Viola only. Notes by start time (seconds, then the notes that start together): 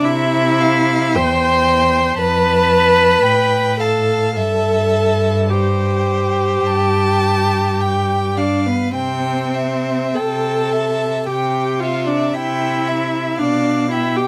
0.05 E4
1.16 C5
2.18 B4
3.80 A4
4.36 A4
5.51 G4
8.38 D4
8.67 B3
8.94 C4
10.14 A4
11.27 G4
11.80 F4
12.07 D4
12.34 E4
13.39 D4
13.91 E4
14.16 G4